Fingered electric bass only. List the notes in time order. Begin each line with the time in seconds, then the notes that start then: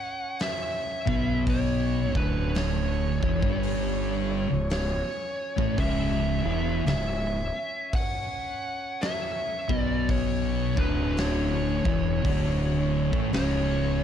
1.07 B1
2.15 D1
3.23 E1
3.43 G1
4.52 C#1
5.58 A1
5.78 C#1
6.45 E1
6.85 C#1
9.70 B1
10.77 D1
11.85 E1
12.25 D1
13.13 A1
13.34 C#1